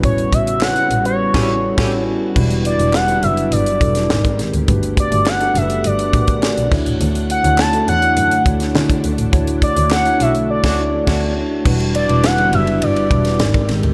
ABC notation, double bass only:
X:1
M:4/4
L:1/16
Q:1/4=103
K:D
V:1 name="Double bass" clef=bass
A,,,2 A,,,3 z A,,,2 z A,,,2 z A,,,2 z2 | E,,,2 z E,,, z2 F,,,2 G,,,2 E,,,2 ^G,,, z G,,, D,, | G,,,2 z G,,, z2 F,,,2 G,,,2 A,,,2 z B,,, D,, A,,, | D,,2 z D,, z2 E,,2 F,,2 D,,2 D, z D,, A,,, |
D,,2 z D,, z2 B,,,2 z D,,2 z D,,2 z2 | E,,,2 z E,,, z2 F,,,2 G,,,2 E,,,2 ^G,,, z G,,, D,, |]